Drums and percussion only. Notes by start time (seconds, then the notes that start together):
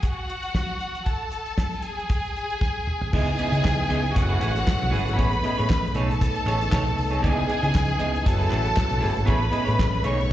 0.03 kick, closed hi-hat
0.30 closed hi-hat
0.43 closed hi-hat
0.55 kick, snare
0.81 closed hi-hat
0.95 closed hi-hat
1.06 kick, closed hi-hat
1.31 closed hi-hat
1.46 closed hi-hat
1.58 kick, snare
1.73 closed hi-hat
1.82 closed hi-hat
1.99 closed hi-hat
2.09 kick, closed hi-hat
2.24 closed hi-hat
2.36 closed hi-hat
2.50 closed hi-hat
2.61 kick, snare
2.87 mid tom
3.01 floor tom
3.13 kick, crash
3.28 closed hi-hat
3.39 closed hi-hat
3.53 closed hi-hat
3.65 kick, snare, clap
3.90 closed hi-hat
4.06 closed hi-hat
4.16 kick, closed hi-hat
4.42 clap, closed hi-hat
4.56 closed hi-hat
4.67 kick, snare, clap
4.83 snare
4.93 open hi-hat
5.08 closed hi-hat
5.19 kick, closed hi-hat
5.33 closed hi-hat
5.44 closed hi-hat
5.59 closed hi-hat
5.70 kick, snare, clap
5.85 closed hi-hat
5.94 closed hi-hat
6.11 closed hi-hat
6.21 kick, closed hi-hat
6.36 closed hi-hat
6.47 clap, closed hi-hat
6.61 closed hi-hat
6.72 kick, snare, clap
6.87 closed hi-hat
6.98 open hi-hat
7.13 closed hi-hat
7.24 kick, closed hi-hat
7.49 closed hi-hat
7.64 closed hi-hat
7.75 kick, snare, clap
7.90 closed hi-hat
8.00 closed hi-hat
8.16 closed hi-hat
8.26 kick, closed hi-hat
8.41 closed hi-hat
8.51 clap, closed hi-hat
8.66 closed hi-hat
8.76 kick, snare, clap
8.91 snare, closed hi-hat
9.02 open hi-hat
9.17 closed hi-hat
9.27 kick, closed hi-hat
9.53 closed hi-hat
9.68 closed hi-hat
9.79 kick, snare, clap
9.94 closed hi-hat
10.04 closed hi-hat
10.21 closed hi-hat